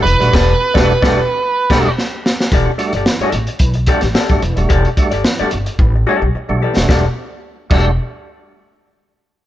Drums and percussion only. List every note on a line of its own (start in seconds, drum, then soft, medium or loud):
0.07 closed hi-hat medium
0.22 closed hi-hat medium
0.34 kick loud
0.34 snare loud
0.34 crash medium
0.75 kick loud
0.75 snare loud
1.02 kick loud
1.02 snare loud
1.70 kick loud
1.70 snare medium
1.70 crash medium
1.98 snare medium
2.26 snare loud
2.40 snare medium
2.52 kick loud
2.52 closed hi-hat medium
2.79 closed hi-hat medium
2.93 closed hi-hat soft
3.06 snare loud
3.21 closed hi-hat soft
3.32 closed hi-hat medium
3.47 closed hi-hat soft
3.59 kick medium
3.59 closed hi-hat medium
3.74 closed hi-hat soft
3.86 kick medium
3.86 closed hi-hat medium
4.01 snare soft
4.01 closed hi-hat medium
4.15 snare loud
4.29 kick medium
4.29 closed hi-hat soft
4.42 closed hi-hat medium
4.57 closed hi-hat medium
4.70 kick loud
4.70 closed hi-hat medium
4.85 closed hi-hat soft
4.97 kick loud
4.97 closed hi-hat medium
5.11 closed hi-hat medium
5.24 snare loud
5.39 closed hi-hat soft
5.51 closed hi-hat medium
5.66 closed hi-hat medium
5.79 kick medium
6.77 snare medium
6.89 kick loud
6.89 snare medium
7.71 kick loud
7.71 crash medium